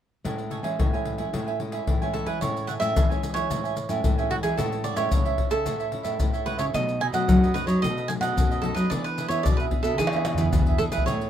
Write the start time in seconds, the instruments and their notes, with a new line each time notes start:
0.24 nylon-string guitar A2 G#3 C#4 E4, cavaquinho A4 C#5 E5 G#5, pandeiro, surdo
0.38 muted cavaquinho stroke, pandeiro
0.50 cavaquinho A4 C#5 E5 G#5, pandeiro
0.63 nylon-string guitar E3 G#3 C#4 E4, cavaquinho C#5 E5 G#5, pandeiro
0.79 nylon-string guitar A2 E3, cavaquinho A4 C#5 E5 G#5, pandeiro, surdo
0.93 nylon-string guitar G#3 C#4 E4, cavaquinho C#5 E5 G#5, pandeiro
1.05 pandeiro
1.18 nylon-string guitar G#3 C#4 E4, cavaquinho C#5 E5 G#5, pandeiro
1.33 nylon-string guitar A2 G#3 C#4 E4, cavaquinho A4 C#5 E5 G#5, pandeiro, surdo
1.47 cavaquinho C#5 E5 G#5, pandeiro
1.59 nylon-string guitar G#3 C#4 E4, muted cavaquinho stroke, pandeiro
1.72 cavaquinho C#5 E5 G#5, pandeiro
1.87 nylon-string guitar A2 E3, pandeiro, surdo
2.02 nylon-string guitar G#3 C#4 E4, cavaquinho C#5 E5 G#5, pandeiro
2.13 cavaquinho A4 C#5 E5 G#5, pandeiro
2.26 nylon-string guitar E3, cavaquinho B4 C#5 E5 G#5, pandeiro
2.41 nylon-string guitar A2 G#3 C#4 E4, cavaquinho A4 C#5 E5 G#5, pandeiro, maracas, surdo
2.56 muted cavaquinho stroke, pandeiro, maracas
2.67 cavaquinho A4 C#5 E5 F#5 G#5, pandeiro, maracas
2.80 nylon-string guitar A2 G#3 C#4 E4, cavaquinho C#5 E5 G#5, pandeiro, maracas
2.96 nylon-string guitar E3, cavaquinho A4 C#5 E5 G#5, pandeiro, maracas, surdo
3.10 nylon-string guitar G#3 C#4 E4, cavaquinho C#5 E5 G#5, pandeiro, maracas
3.23 pandeiro, maracas
3.34 nylon-string guitar E3, cavaquinho C#5 E5 G#5, pandeiro, maracas
3.50 nylon-string guitar A2 G#3 C#4 E4, cavaquinho A4 C#5 E5 G#5, pandeiro, maracas, surdo
3.64 cavaquinho C#5 E5 G#5, pandeiro, maracas
3.76 muted cavaquinho stroke, pandeiro, maracas
3.89 nylon-string guitar A2 G#3 C#4 E4, cavaquinho C#5 E5 G#5, pandeiro, maracas
4.04 nylon-string guitar A2 E3, pandeiro, maracas, surdo
4.18 nylon-string guitar G#3 C#4 E4, cavaquinho C#5 E5 G#5, pandeiro, maracas
4.29 cavaquinho F#4 A4 C#5 E5 G#5, pandeiro
4.43 nylon-string guitar E3, cavaquinho G#4 C#5 E5 G#5, pandeiro, maracas
4.57 nylon-string guitar A2 G#3 C#4 E4, cavaquinho F#4 A4 C#5 E5, pandeiro, maracas, surdo
4.72 muted cavaquinho stroke, pandeiro, maracas
4.84 cavaquinho F#4 A4 C#5 D5 E5, pandeiro, maracas
4.96 nylon-string guitar A2 G#3 C#4 E4, cavaquinho A4 C#5 E5, pandeiro, maracas
5.11 nylon-string guitar A2 C#3, cavaquinho F#4 A4 C#5 E5, pandeiro, maracas, surdo
5.25 cavaquinho A4 C#5 E5, pandeiro, maracas
5.38 nylon-string guitar C#4 E4, pandeiro, surdo
5.50 nylon-string guitar C#3, cavaquinho A4 C#5 E5, pandeiro, maracas
5.65 nylon-string guitar A2, cavaquinho F#4 A4 C#5 E5, pandeiro, maracas, surdo
5.80 cavaquinho A4 C#5 E5, pandeiro, maracas
5.91 nylon-string guitar C#4 E4, muted cavaquinho stroke, pandeiro
6.03 nylon-string guitar A2, cavaquinho A4 C#5 E5, pandeiro, maracas
6.20 nylon-string guitar A2, pandeiro, maracas, surdo
6.33 cavaquinho A4 C#5 E5, pandeiro, maracas
6.45 nylon-string guitar G#3 C#4 E4, cavaquinho F#4 A4 B4 C#5 E5, pandeiro
6.58 nylon-string guitar C#3, cavaquinho A4 C#5 E5, pandeiro, maracas
6.73 nylon-string guitar B2 F#3 A3 D#4, cavaquinho D#4 A4 B4 D#5, pandeiro, maracas, surdo
6.88 muted cavaquinho stroke, pandeiro, maracas
7.00 cavaquinho D#4 A4 B4 D#5 G#5, pandeiro
7.12 nylon-string guitar B2 F#3 A3 D#4, cavaquinho A4 B4 D#5 F#5, pandeiro, maracas
7.28 nylon-string guitar F#2 F#3, cavaquinho D#4 A4 B4 D#5, pandeiro, maracas, surdo
7.43 cavaquinho A4 B4 D#5, pandeiro, maracas
7.54 nylon-string guitar F#3 A3 D#4, cavaquinho B4, pandeiro, maracas
7.66 nylon-string guitar F#3, cavaquinho A4 B4 C#5 D#5, pandeiro, maracas
7.82 nylon-string guitar B2, cavaquinho D#4 A4 B4 D#5, pandeiro, maracas, surdo
7.97 cavaquinho A4 B4 D#5, pandeiro, maracas
8.08 nylon-string guitar F#3 A3 D#4, cavaquinho G#5, muted cavaquinho stroke, pandeiro, maracas
8.21 nylon-string guitar B2, cavaquinho A4 B4 D#5 F#5, pandeiro, maracas
8.36 nylon-string guitar F#2 B2, pandeiro, maracas, surdo
8.51 cavaquinho A4 B4 D#5, pandeiro, maracas
8.62 nylon-string guitar F#3 A3 D#4, cavaquinho D#4 A4 B4 D#5, pandeiro
8.75 nylon-string guitar F#3, cavaquinho A4 B4 D#5, pandeiro, maracas
8.90 nylon-string guitar E3 B3 D4 G#4, cavaquinho D4 G#4 B4 D5 E5, pandeiro, maracas, surdo
9.04 cavaquinho B4, muted cavaquinho stroke, pandeiro, maracas
9.18 cavaquinho D4 G#4 B4 E5, pandeiro, maracas
9.28 nylon-string guitar E3 B3 D4 G#4, cavaquinho G#4 B4 C#5 E5, pandeiro, maracas
9.43 nylon-string guitar B2, cavaquinho G#4 B4 D5 E5, pandeiro, maracas, surdo
9.57 cavaquinho B4 E5, pandeiro, maracas
9.62 cavaquinho G#4
9.71 nylon-string guitar B3 D4 G#4, pandeiro, surdo
9.83 nylon-string guitar B2, cavaquinho G#4 A4 B4 E5, pandeiro, maracas
9.98 nylon-string guitar E3, cavaquinho D4 G#4 B4 E5, pandeiro, tamborim, maracas, surdo
10.07 tamborim
10.12 nylon-string guitar B3 D4 G#4, cavaquinho G#4 B4 E5, pandeiro, maracas
10.16 tamborim
10.25 nylon-string guitar B3 D4 G#4, pandeiro, tamborim, maracas
10.35 nylon-string guitar E3 B3 D4, cavaquinho E5, surdo, pandeiro, maracas
10.39 nylon-string guitar G#4, cavaquinho G#4 B4
10.43 surdo
10.52 nylon-string guitar B2 E3, surdo, pandeiro, maracas
10.62 surdo
10.66 cavaquinho G#4 B4 E5, pandeiro, maracas
10.70 surdo
10.78 nylon-string guitar B3 D4 G#4, cavaquinho D4 G#4 A4 B4 E5, pandeiro, maracas, surdo
10.92 nylon-string guitar E3, cavaquinho G#4 B4 E5, pandeiro, maracas
10.98 surdo
11.06 nylon-string guitar A2 A3 C#4 E4 G#4, cavaquinho A4 C#5 E5, pandeiro, maracas, surdo
11.10 cavaquinho G#5
11.21 muted cavaquinho stroke, pandeiro, maracas